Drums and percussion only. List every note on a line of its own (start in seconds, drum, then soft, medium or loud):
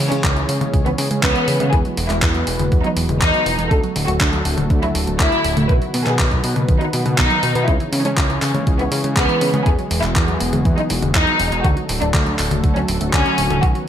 0.12 closed hi-hat medium
0.24 kick loud
0.24 clap loud
0.24 closed hi-hat medium
0.36 closed hi-hat soft
0.49 open hi-hat loud
0.61 closed hi-hat medium
0.61 high tom medium
0.74 kick loud
0.74 closed hi-hat medium
0.86 closed hi-hat soft
0.98 open hi-hat loud
1.11 closed hi-hat medium
1.23 kick loud
1.23 clap loud
1.23 closed hi-hat medium
1.36 closed hi-hat soft
1.48 open hi-hat loud
1.60 closed hi-hat medium
1.60 high tom medium
1.73 kick loud
1.73 closed hi-hat medium
1.85 closed hi-hat soft
1.97 open hi-hat loud
2.10 clap soft
2.10 closed hi-hat medium
2.22 kick loud
2.22 clap loud
2.22 closed hi-hat soft
2.35 closed hi-hat soft
2.47 open hi-hat loud
2.59 closed hi-hat medium
2.59 high tom medium
2.72 kick loud
2.72 closed hi-hat medium
2.84 closed hi-hat soft
2.97 open hi-hat loud
3.09 closed hi-hat soft
3.09 high tom medium
3.21 kick loud
3.21 clap loud
3.21 closed hi-hat medium
3.34 closed hi-hat soft
3.46 open hi-hat loud
3.59 closed hi-hat medium
3.71 kick loud
3.71 closed hi-hat soft
3.84 closed hi-hat soft
3.96 open hi-hat loud
4.08 closed hi-hat medium
4.21 kick loud
4.21 clap loud
4.21 closed hi-hat medium
4.33 closed hi-hat soft
4.45 open hi-hat loud
4.58 closed hi-hat soft
4.58 high tom medium
4.70 kick loud
4.70 closed hi-hat medium
4.83 closed hi-hat soft
4.95 open hi-hat loud
5.07 closed hi-hat soft
5.20 kick loud
5.20 clap loud
5.20 closed hi-hat medium
5.32 closed hi-hat soft
5.44 open hi-hat loud
5.57 closed hi-hat medium
5.57 high tom medium
5.69 kick loud
5.69 closed hi-hat soft
5.82 closed hi-hat soft
5.94 open hi-hat loud
6.06 clap soft
6.06 closed hi-hat soft
6.19 kick loud
6.19 clap loud
6.19 closed hi-hat soft
6.31 kick medium
6.31 closed hi-hat soft
6.44 open hi-hat loud
6.56 closed hi-hat soft
6.56 high tom medium
6.69 kick loud
6.69 closed hi-hat soft
6.81 closed hi-hat soft
6.93 open hi-hat loud
7.06 closed hi-hat soft
7.06 high tom medium
7.18 kick loud
7.18 clap loud
7.18 closed hi-hat medium
7.31 closed hi-hat soft
7.43 open hi-hat loud
7.55 closed hi-hat soft
7.68 kick loud
7.68 closed hi-hat soft
7.80 closed hi-hat soft
7.93 open hi-hat loud
8.05 closed hi-hat soft
8.17 kick loud
8.17 clap loud
8.17 closed hi-hat soft
8.30 closed hi-hat soft
8.42 clap medium
8.42 open hi-hat loud
8.55 closed hi-hat soft
8.55 high tom medium
8.67 kick loud
8.67 closed hi-hat soft
8.79 closed hi-hat soft
8.92 open hi-hat loud
9.04 closed hi-hat soft
9.17 kick loud
9.17 clap loud
9.17 closed hi-hat medium
9.29 closed hi-hat soft
9.41 open hi-hat loud
9.54 closed hi-hat soft
9.54 high tom medium
9.66 kick loud
9.66 closed hi-hat soft
9.79 closed hi-hat soft
9.91 open hi-hat loud
10.03 clap soft
10.03 closed hi-hat medium
10.16 kick loud
10.16 clap loud
10.16 closed hi-hat medium
10.28 closed hi-hat soft
10.41 open hi-hat loud
10.53 closed hi-hat medium
10.53 high tom medium
10.65 kick loud
10.65 closed hi-hat medium
10.78 closed hi-hat soft
10.90 open hi-hat loud
11.03 closed hi-hat soft
11.03 high tom medium
11.15 kick loud
11.15 clap loud
11.15 closed hi-hat medium
11.27 closed hi-hat soft
11.40 open hi-hat loud
11.52 closed hi-hat medium
11.64 kick loud
11.64 closed hi-hat medium
11.77 closed hi-hat soft
11.89 open hi-hat loud
12.02 closed hi-hat medium
12.14 kick loud
12.14 clap loud
12.14 closed hi-hat medium
12.26 closed hi-hat soft
12.39 clap medium
12.39 open hi-hat loud
12.51 closed hi-hat medium
12.51 high tom medium
12.64 kick loud
12.64 closed hi-hat medium
12.76 closed hi-hat soft
12.88 open hi-hat loud
13.01 closed hi-hat medium
13.13 kick loud
13.13 clap loud
13.13 closed hi-hat medium
13.26 closed hi-hat soft
13.38 open hi-hat loud
13.51 closed hi-hat medium
13.51 high tom medium
13.63 kick loud
13.63 closed hi-hat medium
13.75 closed hi-hat soft